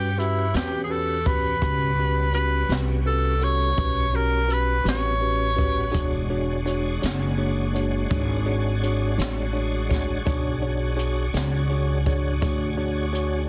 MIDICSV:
0, 0, Header, 1, 6, 480
1, 0, Start_track
1, 0, Tempo, 719424
1, 1085, Time_signature, 12, 3, 24, 8
1, 8999, End_track
2, 0, Start_track
2, 0, Title_t, "Tenor saxophone"
2, 0, Program_c, 0, 66
2, 0, Note_on_c, 0, 67, 68
2, 127, Note_on_c, 0, 64, 66
2, 137, Note_off_c, 0, 67, 0
2, 372, Note_on_c, 0, 67, 69
2, 382, Note_off_c, 0, 64, 0
2, 556, Note_off_c, 0, 67, 0
2, 560, Note_on_c, 0, 68, 53
2, 608, Note_on_c, 0, 69, 72
2, 618, Note_off_c, 0, 68, 0
2, 844, Note_on_c, 0, 71, 82
2, 854, Note_off_c, 0, 69, 0
2, 1559, Note_off_c, 0, 71, 0
2, 1563, Note_on_c, 0, 71, 79
2, 1842, Note_off_c, 0, 71, 0
2, 2046, Note_on_c, 0, 69, 78
2, 2295, Note_on_c, 0, 73, 87
2, 2305, Note_off_c, 0, 69, 0
2, 2771, Note_on_c, 0, 70, 79
2, 2781, Note_off_c, 0, 73, 0
2, 3019, Note_on_c, 0, 71, 80
2, 3029, Note_off_c, 0, 70, 0
2, 3253, Note_off_c, 0, 71, 0
2, 3261, Note_on_c, 0, 73, 81
2, 4188, Note_off_c, 0, 73, 0
2, 8999, End_track
3, 0, Start_track
3, 0, Title_t, "Tine electric piano"
3, 0, Program_c, 1, 4
3, 118, Note_on_c, 1, 61, 43
3, 118, Note_on_c, 1, 71, 45
3, 120, Note_on_c, 1, 66, 42
3, 122, Note_on_c, 1, 67, 38
3, 301, Note_off_c, 1, 61, 0
3, 301, Note_off_c, 1, 71, 0
3, 302, Note_off_c, 1, 66, 0
3, 303, Note_off_c, 1, 67, 0
3, 364, Note_on_c, 1, 61, 43
3, 364, Note_on_c, 1, 67, 42
3, 367, Note_on_c, 1, 66, 41
3, 369, Note_on_c, 1, 71, 49
3, 544, Note_off_c, 1, 61, 0
3, 544, Note_off_c, 1, 67, 0
3, 546, Note_off_c, 1, 66, 0
3, 547, Note_off_c, 1, 71, 0
3, 594, Note_on_c, 1, 61, 45
3, 597, Note_on_c, 1, 66, 41
3, 597, Note_on_c, 1, 67, 44
3, 601, Note_on_c, 1, 71, 55
3, 780, Note_off_c, 1, 61, 0
3, 781, Note_off_c, 1, 66, 0
3, 781, Note_off_c, 1, 67, 0
3, 783, Note_off_c, 1, 71, 0
3, 840, Note_on_c, 1, 61, 43
3, 840, Note_on_c, 1, 71, 47
3, 842, Note_on_c, 1, 67, 42
3, 843, Note_on_c, 1, 66, 39
3, 1022, Note_off_c, 1, 61, 0
3, 1023, Note_off_c, 1, 67, 0
3, 1023, Note_off_c, 1, 71, 0
3, 1024, Note_off_c, 1, 66, 0
3, 1084, Note_on_c, 1, 66, 49
3, 1085, Note_on_c, 1, 61, 55
3, 1085, Note_on_c, 1, 67, 47
3, 1086, Note_on_c, 1, 71, 65
3, 1265, Note_off_c, 1, 61, 0
3, 1265, Note_off_c, 1, 66, 0
3, 1265, Note_off_c, 1, 67, 0
3, 1266, Note_off_c, 1, 71, 0
3, 1329, Note_on_c, 1, 61, 43
3, 1329, Note_on_c, 1, 66, 39
3, 1332, Note_on_c, 1, 71, 52
3, 1333, Note_on_c, 1, 67, 41
3, 1507, Note_off_c, 1, 61, 0
3, 1507, Note_off_c, 1, 66, 0
3, 1509, Note_off_c, 1, 67, 0
3, 1509, Note_off_c, 1, 71, 0
3, 1562, Note_on_c, 1, 66, 43
3, 1562, Note_on_c, 1, 71, 52
3, 1565, Note_on_c, 1, 61, 44
3, 1567, Note_on_c, 1, 67, 46
3, 1744, Note_off_c, 1, 66, 0
3, 1744, Note_off_c, 1, 71, 0
3, 1745, Note_off_c, 1, 61, 0
3, 1746, Note_off_c, 1, 67, 0
3, 1799, Note_on_c, 1, 66, 41
3, 1801, Note_on_c, 1, 61, 43
3, 1801, Note_on_c, 1, 71, 52
3, 1804, Note_on_c, 1, 67, 43
3, 1983, Note_off_c, 1, 66, 0
3, 1984, Note_off_c, 1, 61, 0
3, 1984, Note_off_c, 1, 71, 0
3, 1985, Note_off_c, 1, 67, 0
3, 2036, Note_on_c, 1, 66, 42
3, 2038, Note_on_c, 1, 61, 49
3, 2041, Note_on_c, 1, 67, 43
3, 2041, Note_on_c, 1, 71, 49
3, 2221, Note_off_c, 1, 66, 0
3, 2222, Note_off_c, 1, 61, 0
3, 2224, Note_off_c, 1, 67, 0
3, 2224, Note_off_c, 1, 71, 0
3, 2278, Note_on_c, 1, 66, 40
3, 2279, Note_on_c, 1, 69, 51
3, 2281, Note_on_c, 1, 61, 45
3, 2282, Note_on_c, 1, 67, 40
3, 2463, Note_off_c, 1, 66, 0
3, 2463, Note_off_c, 1, 69, 0
3, 2464, Note_off_c, 1, 61, 0
3, 2464, Note_off_c, 1, 67, 0
3, 2514, Note_on_c, 1, 61, 45
3, 2514, Note_on_c, 1, 67, 43
3, 2517, Note_on_c, 1, 71, 47
3, 2518, Note_on_c, 1, 66, 42
3, 2700, Note_off_c, 1, 61, 0
3, 2701, Note_off_c, 1, 67, 0
3, 2702, Note_off_c, 1, 71, 0
3, 2703, Note_off_c, 1, 66, 0
3, 2755, Note_on_c, 1, 61, 47
3, 2758, Note_on_c, 1, 66, 45
3, 2759, Note_on_c, 1, 73, 54
3, 2762, Note_on_c, 1, 67, 45
3, 2941, Note_off_c, 1, 61, 0
3, 2943, Note_off_c, 1, 66, 0
3, 2943, Note_off_c, 1, 73, 0
3, 2944, Note_off_c, 1, 67, 0
3, 2987, Note_on_c, 1, 61, 46
3, 2989, Note_on_c, 1, 66, 42
3, 2992, Note_on_c, 1, 67, 42
3, 2992, Note_on_c, 1, 71, 47
3, 3177, Note_off_c, 1, 61, 0
3, 3178, Note_off_c, 1, 66, 0
3, 3180, Note_off_c, 1, 67, 0
3, 3180, Note_off_c, 1, 71, 0
3, 3227, Note_on_c, 1, 67, 43
3, 3228, Note_on_c, 1, 61, 45
3, 3229, Note_on_c, 1, 71, 52
3, 3233, Note_on_c, 1, 66, 43
3, 3418, Note_off_c, 1, 61, 0
3, 3418, Note_off_c, 1, 67, 0
3, 3418, Note_off_c, 1, 71, 0
3, 3420, Note_off_c, 1, 66, 0
3, 3472, Note_on_c, 1, 61, 49
3, 3475, Note_on_c, 1, 66, 46
3, 3475, Note_on_c, 1, 67, 43
3, 3477, Note_on_c, 1, 71, 57
3, 3660, Note_off_c, 1, 61, 0
3, 3661, Note_off_c, 1, 66, 0
3, 3661, Note_off_c, 1, 67, 0
3, 3662, Note_off_c, 1, 71, 0
3, 3711, Note_on_c, 1, 61, 48
3, 3711, Note_on_c, 1, 71, 52
3, 3712, Note_on_c, 1, 66, 41
3, 3712, Note_on_c, 1, 67, 41
3, 3899, Note_off_c, 1, 61, 0
3, 3900, Note_off_c, 1, 66, 0
3, 3900, Note_off_c, 1, 67, 0
3, 3900, Note_off_c, 1, 71, 0
3, 3945, Note_on_c, 1, 66, 63
3, 3947, Note_on_c, 1, 73, 71
3, 3949, Note_on_c, 1, 62, 69
3, 3949, Note_on_c, 1, 68, 63
3, 4136, Note_off_c, 1, 66, 0
3, 4138, Note_off_c, 1, 62, 0
3, 4138, Note_off_c, 1, 73, 0
3, 4139, Note_off_c, 1, 68, 0
3, 4203, Note_on_c, 1, 68, 51
3, 4203, Note_on_c, 1, 73, 61
3, 4205, Note_on_c, 1, 62, 54
3, 4205, Note_on_c, 1, 66, 55
3, 4386, Note_off_c, 1, 68, 0
3, 4386, Note_off_c, 1, 73, 0
3, 4387, Note_off_c, 1, 62, 0
3, 4387, Note_off_c, 1, 66, 0
3, 4439, Note_on_c, 1, 62, 56
3, 4442, Note_on_c, 1, 66, 53
3, 4442, Note_on_c, 1, 68, 50
3, 4443, Note_on_c, 1, 73, 64
3, 4624, Note_off_c, 1, 62, 0
3, 4625, Note_off_c, 1, 68, 0
3, 4626, Note_off_c, 1, 66, 0
3, 4626, Note_off_c, 1, 73, 0
3, 4684, Note_on_c, 1, 62, 56
3, 4684, Note_on_c, 1, 66, 49
3, 4685, Note_on_c, 1, 73, 62
3, 4689, Note_on_c, 1, 68, 50
3, 4866, Note_off_c, 1, 62, 0
3, 4866, Note_off_c, 1, 66, 0
3, 4867, Note_off_c, 1, 73, 0
3, 4869, Note_off_c, 1, 68, 0
3, 4920, Note_on_c, 1, 62, 58
3, 4923, Note_on_c, 1, 66, 49
3, 4923, Note_on_c, 1, 68, 51
3, 4926, Note_on_c, 1, 73, 63
3, 5104, Note_off_c, 1, 62, 0
3, 5106, Note_off_c, 1, 66, 0
3, 5106, Note_off_c, 1, 68, 0
3, 5107, Note_off_c, 1, 73, 0
3, 5165, Note_on_c, 1, 62, 54
3, 5166, Note_on_c, 1, 66, 52
3, 5167, Note_on_c, 1, 68, 54
3, 5169, Note_on_c, 1, 73, 64
3, 5347, Note_off_c, 1, 62, 0
3, 5347, Note_off_c, 1, 66, 0
3, 5348, Note_off_c, 1, 68, 0
3, 5349, Note_off_c, 1, 73, 0
3, 5403, Note_on_c, 1, 66, 47
3, 5405, Note_on_c, 1, 73, 59
3, 5407, Note_on_c, 1, 68, 51
3, 5409, Note_on_c, 1, 62, 54
3, 5586, Note_off_c, 1, 66, 0
3, 5587, Note_off_c, 1, 73, 0
3, 5588, Note_off_c, 1, 68, 0
3, 5589, Note_off_c, 1, 62, 0
3, 5643, Note_on_c, 1, 68, 53
3, 5646, Note_on_c, 1, 62, 60
3, 5646, Note_on_c, 1, 66, 53
3, 5646, Note_on_c, 1, 73, 64
3, 5826, Note_off_c, 1, 68, 0
3, 5827, Note_off_c, 1, 62, 0
3, 5827, Note_off_c, 1, 66, 0
3, 5828, Note_off_c, 1, 73, 0
3, 5892, Note_on_c, 1, 68, 46
3, 5893, Note_on_c, 1, 73, 63
3, 5894, Note_on_c, 1, 66, 49
3, 5895, Note_on_c, 1, 62, 53
3, 6070, Note_off_c, 1, 68, 0
3, 6071, Note_off_c, 1, 66, 0
3, 6071, Note_off_c, 1, 73, 0
3, 6072, Note_off_c, 1, 62, 0
3, 6123, Note_on_c, 1, 62, 56
3, 6124, Note_on_c, 1, 66, 51
3, 6129, Note_on_c, 1, 68, 49
3, 6129, Note_on_c, 1, 73, 58
3, 6306, Note_off_c, 1, 62, 0
3, 6306, Note_off_c, 1, 66, 0
3, 6309, Note_off_c, 1, 68, 0
3, 6309, Note_off_c, 1, 73, 0
3, 6355, Note_on_c, 1, 66, 50
3, 6357, Note_on_c, 1, 62, 57
3, 6359, Note_on_c, 1, 68, 51
3, 6359, Note_on_c, 1, 73, 60
3, 6542, Note_off_c, 1, 66, 0
3, 6543, Note_off_c, 1, 62, 0
3, 6544, Note_off_c, 1, 68, 0
3, 6544, Note_off_c, 1, 73, 0
3, 6600, Note_on_c, 1, 66, 52
3, 6601, Note_on_c, 1, 73, 64
3, 6603, Note_on_c, 1, 68, 50
3, 6605, Note_on_c, 1, 62, 58
3, 6784, Note_off_c, 1, 66, 0
3, 6785, Note_off_c, 1, 73, 0
3, 6786, Note_off_c, 1, 68, 0
3, 6787, Note_off_c, 1, 62, 0
3, 6842, Note_on_c, 1, 68, 58
3, 6844, Note_on_c, 1, 62, 69
3, 6847, Note_on_c, 1, 66, 57
3, 6847, Note_on_c, 1, 73, 73
3, 7025, Note_off_c, 1, 68, 0
3, 7026, Note_off_c, 1, 62, 0
3, 7027, Note_off_c, 1, 66, 0
3, 7028, Note_off_c, 1, 73, 0
3, 7080, Note_on_c, 1, 62, 53
3, 7085, Note_on_c, 1, 66, 50
3, 7087, Note_on_c, 1, 73, 62
3, 7088, Note_on_c, 1, 68, 50
3, 7264, Note_off_c, 1, 62, 0
3, 7267, Note_off_c, 1, 66, 0
3, 7268, Note_off_c, 1, 68, 0
3, 7268, Note_off_c, 1, 73, 0
3, 7315, Note_on_c, 1, 62, 54
3, 7315, Note_on_c, 1, 66, 54
3, 7316, Note_on_c, 1, 73, 65
3, 7317, Note_on_c, 1, 68, 52
3, 7501, Note_off_c, 1, 66, 0
3, 7502, Note_off_c, 1, 62, 0
3, 7502, Note_off_c, 1, 68, 0
3, 7502, Note_off_c, 1, 73, 0
3, 7565, Note_on_c, 1, 62, 55
3, 7567, Note_on_c, 1, 66, 52
3, 7567, Note_on_c, 1, 73, 59
3, 7568, Note_on_c, 1, 68, 50
3, 7747, Note_off_c, 1, 62, 0
3, 7748, Note_off_c, 1, 66, 0
3, 7748, Note_off_c, 1, 68, 0
3, 7748, Note_off_c, 1, 73, 0
3, 7804, Note_on_c, 1, 68, 50
3, 7804, Note_on_c, 1, 73, 63
3, 7806, Note_on_c, 1, 62, 56
3, 7807, Note_on_c, 1, 66, 52
3, 7986, Note_off_c, 1, 68, 0
3, 7986, Note_off_c, 1, 73, 0
3, 7987, Note_off_c, 1, 62, 0
3, 7987, Note_off_c, 1, 66, 0
3, 8045, Note_on_c, 1, 66, 48
3, 8048, Note_on_c, 1, 73, 59
3, 8050, Note_on_c, 1, 62, 51
3, 8051, Note_on_c, 1, 68, 49
3, 8226, Note_off_c, 1, 66, 0
3, 8228, Note_off_c, 1, 73, 0
3, 8229, Note_off_c, 1, 62, 0
3, 8230, Note_off_c, 1, 68, 0
3, 8284, Note_on_c, 1, 73, 61
3, 8286, Note_on_c, 1, 62, 53
3, 8287, Note_on_c, 1, 66, 51
3, 8290, Note_on_c, 1, 68, 49
3, 8466, Note_off_c, 1, 73, 0
3, 8467, Note_off_c, 1, 62, 0
3, 8467, Note_off_c, 1, 66, 0
3, 8469, Note_off_c, 1, 68, 0
3, 8521, Note_on_c, 1, 62, 57
3, 8521, Note_on_c, 1, 66, 52
3, 8522, Note_on_c, 1, 68, 53
3, 8523, Note_on_c, 1, 73, 62
3, 8704, Note_off_c, 1, 62, 0
3, 8704, Note_off_c, 1, 66, 0
3, 8704, Note_off_c, 1, 68, 0
3, 8705, Note_off_c, 1, 73, 0
3, 8757, Note_on_c, 1, 68, 46
3, 8758, Note_on_c, 1, 62, 51
3, 8759, Note_on_c, 1, 66, 46
3, 8760, Note_on_c, 1, 73, 59
3, 8942, Note_off_c, 1, 62, 0
3, 8942, Note_off_c, 1, 68, 0
3, 8943, Note_off_c, 1, 66, 0
3, 8943, Note_off_c, 1, 73, 0
3, 8999, End_track
4, 0, Start_track
4, 0, Title_t, "Tonewheel organ"
4, 0, Program_c, 2, 16
4, 0, Note_on_c, 2, 61, 54
4, 0, Note_on_c, 2, 67, 55
4, 0, Note_on_c, 2, 71, 56
4, 0, Note_on_c, 2, 78, 51
4, 1055, Note_off_c, 2, 67, 0
4, 1055, Note_off_c, 2, 78, 0
4, 1056, Note_off_c, 2, 61, 0
4, 1057, Note_off_c, 2, 71, 0
4, 1079, Note_on_c, 2, 55, 54
4, 1079, Note_on_c, 2, 66, 55
4, 1081, Note_on_c, 2, 61, 51
4, 1086, Note_on_c, 2, 59, 55
4, 3938, Note_off_c, 2, 66, 0
4, 3939, Note_off_c, 2, 55, 0
4, 3939, Note_off_c, 2, 61, 0
4, 3942, Note_off_c, 2, 59, 0
4, 3971, Note_on_c, 2, 56, 56
4, 3974, Note_on_c, 2, 73, 60
4, 3978, Note_on_c, 2, 62, 55
4, 3980, Note_on_c, 2, 66, 57
4, 6823, Note_off_c, 2, 56, 0
4, 6823, Note_off_c, 2, 73, 0
4, 6826, Note_off_c, 2, 62, 0
4, 6827, Note_off_c, 2, 66, 0
4, 6831, Note_on_c, 2, 68, 55
4, 6831, Note_on_c, 2, 73, 55
4, 6834, Note_on_c, 2, 62, 60
4, 6835, Note_on_c, 2, 66, 54
4, 8999, Note_off_c, 2, 62, 0
4, 8999, Note_off_c, 2, 66, 0
4, 8999, Note_off_c, 2, 68, 0
4, 8999, Note_off_c, 2, 73, 0
4, 8999, End_track
5, 0, Start_track
5, 0, Title_t, "Upright bass"
5, 0, Program_c, 3, 32
5, 0, Note_on_c, 3, 43, 67
5, 343, Note_off_c, 3, 43, 0
5, 361, Note_on_c, 3, 40, 75
5, 1062, Note_off_c, 3, 40, 0
5, 1081, Note_on_c, 3, 37, 70
5, 1782, Note_off_c, 3, 37, 0
5, 1795, Note_on_c, 3, 36, 74
5, 2499, Note_off_c, 3, 36, 0
5, 2521, Note_on_c, 3, 35, 72
5, 3223, Note_off_c, 3, 35, 0
5, 3235, Note_on_c, 3, 33, 80
5, 3940, Note_off_c, 3, 33, 0
5, 3967, Note_on_c, 3, 28, 74
5, 4666, Note_off_c, 3, 28, 0
5, 4693, Note_on_c, 3, 30, 76
5, 5390, Note_off_c, 3, 30, 0
5, 5410, Note_on_c, 3, 32, 76
5, 6108, Note_off_c, 3, 32, 0
5, 6125, Note_on_c, 3, 33, 70
5, 6825, Note_off_c, 3, 33, 0
5, 6850, Note_on_c, 3, 35, 66
5, 7547, Note_off_c, 3, 35, 0
5, 7565, Note_on_c, 3, 37, 76
5, 8265, Note_off_c, 3, 37, 0
5, 8288, Note_on_c, 3, 38, 71
5, 8986, Note_off_c, 3, 38, 0
5, 8999, End_track
6, 0, Start_track
6, 0, Title_t, "Drums"
6, 128, Note_on_c, 9, 42, 50
6, 195, Note_off_c, 9, 42, 0
6, 359, Note_on_c, 9, 42, 62
6, 377, Note_on_c, 9, 38, 85
6, 426, Note_off_c, 9, 42, 0
6, 444, Note_off_c, 9, 38, 0
6, 840, Note_on_c, 9, 42, 51
6, 841, Note_on_c, 9, 36, 67
6, 907, Note_off_c, 9, 42, 0
6, 908, Note_off_c, 9, 36, 0
6, 1079, Note_on_c, 9, 42, 63
6, 1080, Note_on_c, 9, 36, 86
6, 1146, Note_off_c, 9, 42, 0
6, 1147, Note_off_c, 9, 36, 0
6, 1557, Note_on_c, 9, 42, 51
6, 1624, Note_off_c, 9, 42, 0
6, 1797, Note_on_c, 9, 42, 67
6, 1815, Note_on_c, 9, 38, 89
6, 1863, Note_off_c, 9, 42, 0
6, 1881, Note_off_c, 9, 38, 0
6, 2276, Note_on_c, 9, 42, 53
6, 2343, Note_off_c, 9, 42, 0
6, 2520, Note_on_c, 9, 42, 76
6, 2521, Note_on_c, 9, 36, 94
6, 2586, Note_off_c, 9, 42, 0
6, 2588, Note_off_c, 9, 36, 0
6, 3002, Note_on_c, 9, 42, 59
6, 3068, Note_off_c, 9, 42, 0
6, 3240, Note_on_c, 9, 42, 68
6, 3258, Note_on_c, 9, 38, 85
6, 3307, Note_off_c, 9, 42, 0
6, 3325, Note_off_c, 9, 38, 0
6, 3724, Note_on_c, 9, 42, 53
6, 3725, Note_on_c, 9, 36, 60
6, 3791, Note_off_c, 9, 42, 0
6, 3792, Note_off_c, 9, 36, 0
6, 3965, Note_on_c, 9, 42, 67
6, 3966, Note_on_c, 9, 36, 87
6, 4031, Note_off_c, 9, 42, 0
6, 4033, Note_off_c, 9, 36, 0
6, 4449, Note_on_c, 9, 42, 50
6, 4516, Note_off_c, 9, 42, 0
6, 4689, Note_on_c, 9, 42, 63
6, 4707, Note_on_c, 9, 38, 89
6, 4756, Note_off_c, 9, 42, 0
6, 4774, Note_off_c, 9, 38, 0
6, 5172, Note_on_c, 9, 42, 45
6, 5239, Note_off_c, 9, 42, 0
6, 5410, Note_on_c, 9, 36, 89
6, 5411, Note_on_c, 9, 42, 67
6, 5477, Note_off_c, 9, 36, 0
6, 5478, Note_off_c, 9, 42, 0
6, 5891, Note_on_c, 9, 42, 51
6, 5958, Note_off_c, 9, 42, 0
6, 6131, Note_on_c, 9, 42, 63
6, 6149, Note_on_c, 9, 38, 87
6, 6197, Note_off_c, 9, 42, 0
6, 6215, Note_off_c, 9, 38, 0
6, 6608, Note_on_c, 9, 42, 53
6, 6609, Note_on_c, 9, 36, 61
6, 6626, Note_on_c, 9, 38, 27
6, 6675, Note_off_c, 9, 42, 0
6, 6676, Note_off_c, 9, 36, 0
6, 6693, Note_off_c, 9, 38, 0
6, 6849, Note_on_c, 9, 36, 89
6, 6849, Note_on_c, 9, 42, 70
6, 6916, Note_off_c, 9, 36, 0
6, 6916, Note_off_c, 9, 42, 0
6, 7331, Note_on_c, 9, 42, 58
6, 7397, Note_off_c, 9, 42, 0
6, 7566, Note_on_c, 9, 42, 66
6, 7584, Note_on_c, 9, 38, 89
6, 7633, Note_off_c, 9, 42, 0
6, 7651, Note_off_c, 9, 38, 0
6, 8048, Note_on_c, 9, 36, 64
6, 8050, Note_on_c, 9, 42, 53
6, 8115, Note_off_c, 9, 36, 0
6, 8116, Note_off_c, 9, 42, 0
6, 8287, Note_on_c, 9, 42, 69
6, 8288, Note_on_c, 9, 36, 92
6, 8353, Note_off_c, 9, 42, 0
6, 8355, Note_off_c, 9, 36, 0
6, 8769, Note_on_c, 9, 42, 52
6, 8835, Note_off_c, 9, 42, 0
6, 8999, End_track
0, 0, End_of_file